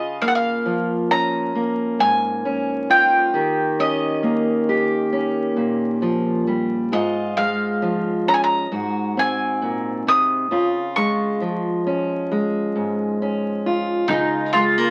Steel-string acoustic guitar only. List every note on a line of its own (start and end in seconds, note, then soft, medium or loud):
0.00 0.66 C#3 medium
0.00 2.89 F4 soft
0.22 1.55 A#3 soft
0.65 3.29 F3 soft
1.11 2.45 C#4 soft
1.55 3.29 A#3 soft
1.99 3.28 G#2 soft
2.45 3.37 C#4 soft
2.90 3.34 F4 soft
3.34 6.02 D#3 medium
3.34 4.68 G4 soft
3.79 5.11 C#4 soft
4.23 6.87 A#3 soft
4.69 6.87 G4 medium
5.13 6.87 C#4 soft
5.57 6.92 A#2 soft
6.02 6.47 F3 medium
6.47 6.92 G3 soft
6.92 8.66 G#2 medium
6.92 8.71 F4 medium
7.38 9.17 G#3 soft
7.82 8.66 F3 medium
8.28 8.67 C#4 soft
8.72 10.45 G#2 medium
8.72 10.45 F#4 medium
9.17 10.46 C4 soft
9.62 10.06 A#2 medium
10.07 10.51 C3 soft
10.51 11.40 C#3 medium
10.51 13.64 F4 medium
10.97 12.30 G#3 soft
11.41 14.04 F3 medium
11.87 13.20 C#4 medium
12.31 14.53 G#3 soft
12.76 14.04 G#2 soft
13.22 14.04 C#4 soft
13.66 14.10 F4 medium
14.10 14.90 C#3 medium
14.10 14.90 F4 medium
14.54 14.78 G#3 medium
14.78 14.90 A#3 soft